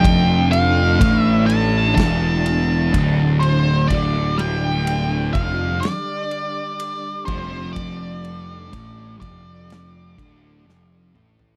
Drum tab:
RD |x-x-x-x-x-x-x-x-|x-x-x-x-x-x-x-x-|x-x-x-x-x-x-----|
SD |--------o-------|--------o-------|--------o---o---|
T2 |----------------|----------------|--------------o-|
FT |----------------|----------------|---------------o|
BD |o---o---o---o---|o-----o-------o-|o---o-o---o-----|